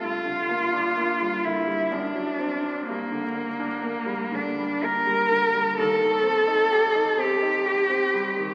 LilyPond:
<<
  \new Staff \with { instrumentName = "Cello" } { \time 3/4 \key g \dorian \tempo 4 = 64 f'4. e'8 d'4 | bes4. d'8 bes'4 | \key c \dorian a'4. g'4. | }
  \new Staff \with { instrumentName = "Grand piano" } { \clef bass \time 3/4 \key g \dorian g,16 d16 bes16 d'16 bes16 g16 d16 g16 fis,16 fis16 c'16 d'16 | g,16 d16 bes16 d'16 bes16 g16 d16 g16 bes16 g16 d16 g16 | \key c \dorian ees,16 ees16 c'16 ees'16 g'16 ees'16 c'16 ees'16 g'16 c'16 g16 ees16 | }
>>